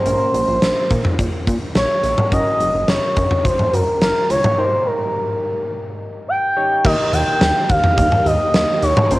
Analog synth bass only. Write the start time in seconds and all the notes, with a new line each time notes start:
0.06 A#1
0.34 A#1
0.48 A#1
0.62 A#1
0.91 A#2
1.19 A#1
1.47 A#2
1.75 A#1
2.03 A#1
2.32 F#1
2.60 F#1
2.74 F#1
2.88 F#1
3.17 F#2
3.45 F#1
3.73 F#2
4.02 F#1
4.30 C#2
6.85 D#2
7.13 D#2
7.41 D#2
7.70 D#2
7.98 D#2
8.26 D#2
8.54 D#2
8.83 D#2
9.11 A#1